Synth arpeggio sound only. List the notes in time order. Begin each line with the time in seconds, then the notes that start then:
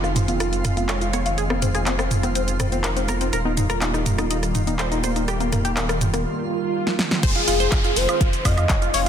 0.04 F4
0.28 F4
0.40 F4
0.65 F4
0.77 F4
0.89 C#5
1.01 F4
1.13 C#5
1.26 F4
1.38 G#4
1.50 C4
1.62 C4
1.75 G#4
1.87 C4
1.99 C4
2.23 C4
2.35 C4
2.60 C4
2.72 C4
2.84 A#4
2.96 C4
3.09 A#4
3.21 C4
3.33 A#4
3.45 D#4
3.57 D#4
3.70 A#4
3.82 D#4
3.94 D#4
4.18 D#4
4.30 D#4
4.55 D#4
4.67 D#4
4.79 C5
4.92 D#4
5.04 C5
5.16 D#4
5.28 G4
5.40 A#3
5.52 A#3
5.65 G4
5.77 A#3
5.89 A#3
6.13 A#3
7.23 C5
7.36 F4
7.48 F4
7.60 C5
7.72 F4
7.84 F4
8.09 F4
8.21 F4
8.45 F4
8.58 F4
8.70 C#5
8.82 F4
8.94 C#5